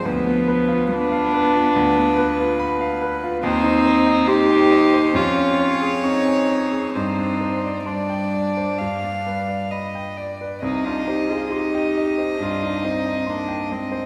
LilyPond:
<<
  \new Staff \with { instrumentName = "Violin" } { \time 4/4 \key g \phrygian \tempo 4 = 68 b'4 b'2. | c''4 c''4 des''2 | c''4 d''4 f''4 ees''8 d''8 | ees''4 ees''2. | }
  \new Staff \with { instrumentName = "Grand piano" } { \time 4/4 \key g \phrygian d,16 b16 b'16 f'16 b''16 f''16 b'16 f'16 d,16 b16 b'16 f'16 b''16 f''16 b'16 f'16 | ees,16 ees'16 c''16 ees''16 c'''16 g''16 ees''16 c''16 f,16 des'16 des''16 aes'16 des'''16 aes''16 des''16 aes'16 | g,16 d'16 c''16 d''16 c'''16 g''16 d''16 c''16 g,16 d'16 b'16 d''16 b''16 g''16 d''16 b'16 | c,16 ees'16 c''16 ees''16 c'''16 g''16 ees''16 c''16 g,16 ees'16 c''16 ees''16 c'''16 g''16 ees''16 c''16 | }
  \new Staff \with { instrumentName = "Viola" } { \time 4/4 \key g \phrygian b4 d'2~ d'8 r8 | ees'4 g'4 f'4 ees'4 | ees'4 d'2 r4 | ees'16 f'16 g'16 aes'16 g'4 f'8 ees'8 d'8 c'8 | }
  \new Staff \with { instrumentName = "Cello" } { \time 4/4 \key g \phrygian f4 b2~ b8 r8 | c'4 ees'4 des'4 c'4 | c'4 g2 r4 | c'16 d'16 ees'16 f'16 ees'4 d'8 c'8 bes8 aes8 | }
>>